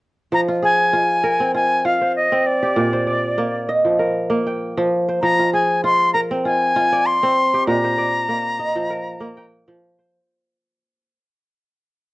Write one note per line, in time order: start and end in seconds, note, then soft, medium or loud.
0.32 2.66 F3 medium
0.32 0.41 A#5 loud
0.48 0.93 F4 medium
0.62 1.99 G#4 medium
0.62 1.51 G#5 medium
0.93 1.54 F4 medium
1.24 2.51 A#4 medium
1.40 2.31 C4 medium
1.54 1.84 F4 medium
1.54 1.86 G#5 medium
1.85 3.36 F4 medium
1.85 2.15 F5 medium
2.01 2.92 C5 medium
2.16 2.48 D#5 medium
2.32 4.12 C4 medium
2.46 3.69 D5 medium
2.63 4.04 G4 medium
2.76 5.10 A#2 medium
2.93 4.12 C5 medium
3.07 3.75 D5 medium
3.38 4.29 A#3 medium
3.69 4.76 D#5 medium
3.85 4.76 F3 medium
3.99 5.27 A#4 medium
4.30 6.23 A#3 medium
4.47 5.40 G5 medium
4.78 5.22 F3 medium
5.09 6.27 C5 medium
5.22 7.57 F3 medium
5.22 5.50 A#5 medium
5.39 5.84 F4 medium
5.54 6.90 G#4 medium
5.54 5.82 G#5 medium
5.84 6.45 F4 medium
5.84 6.12 C6 medium
6.14 7.42 A#4 medium
6.14 6.21 A#5 medium
6.31 7.22 C4 medium
6.45 6.76 F4 medium
6.45 7.07 G#5 medium
6.76 8.27 F4 medium
6.92 7.98 D5 medium
7.06 7.67 C6 medium
7.23 9.03 C4 medium
7.54 8.95 G4 medium
7.67 10.01 A#2 medium
7.67 9.47 A#5 medium
7.84 9.03 C5 medium
7.98 8.66 D5 medium
8.29 9.20 A#3 medium
8.60 9.67 D#5 medium
8.76 9.66 F3 medium
8.90 10.17 A#4 medium
9.20 11.13 A#3 medium
9.37 10.30 G5 medium
9.67 10.17 F3 medium
9.98 11.17 C5 soft